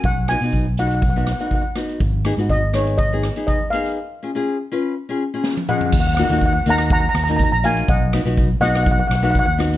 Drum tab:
CC |----------------|----------------|----------------|x---------------|
HH |x-xxx-xxx-xxx-xx|x-xxx-xxx-xxx-xx|----------------|--xxx-xxx-xxx-xx|
SD |--r-------r---r-|--r---r---r-----|------------o---|--r----r--r-----|
T1 |----------------|----------------|-------------o--|----------------|
T2 |----------------|----------------|--------------o-|----------------|
FT |----------------|----------------|---------------o|----------------|
BD |o---o---o---o---|o---o---o---o---|----------------|o---o---o---o---|

CC |----------------|
HH |x-xxx-xxx-xxx-xx|
SD |--r----r--r---r-|
T1 |----------------|
T2 |----------------|
FT |----------------|
BD |o---o---o---o---|